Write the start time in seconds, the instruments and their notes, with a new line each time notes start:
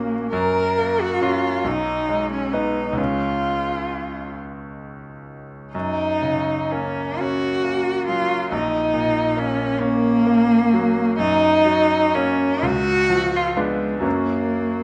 Already playing: grand piano A#1 A#2 A#3 C#4 F#4, cello A#3
0.32 grand piano F#2, cello A#4
0.78 grand piano A#3
1.01 cello F#4
1.21 grand piano C#4 F#4, cello F4
1.64 grand piano B1, cello D#4
2.09 grand piano G#3
2.33 cello C#4
2.53 grand piano B3 D#4, cello D#4
2.93 grand piano C#2 G#3
2.97 grand piano C#4, cello F4
5.73 grand piano F#2, cello D#4
6.22 grand piano C#3
6.72 grand piano A#3, cello C#4
7.19 grand piano C#4, cello F#4
7.64 grand piano A#3
8.08 grand piano F#3, cello F4
8.52 grand piano A#1, cello D#4
8.94 grand piano A#2
9.37 grand piano A#3, cello C#4
9.80 cello A#3, grand piano C#4
10.27 grand piano A#3
10.73 grand piano F#3
11.19 grand piano F#2, cello D#4
11.65 grand piano F#3
12.15 grand piano A#3 C#4, cello C#4
12.63 grand piano C#2, cello F#4
13.10 grand piano F3
13.36 cello F4
13.57 cello G#3, grand piano B3 D4
14.00 grand piano F#2 F#3 A#3 C#4
14.05 cello A#3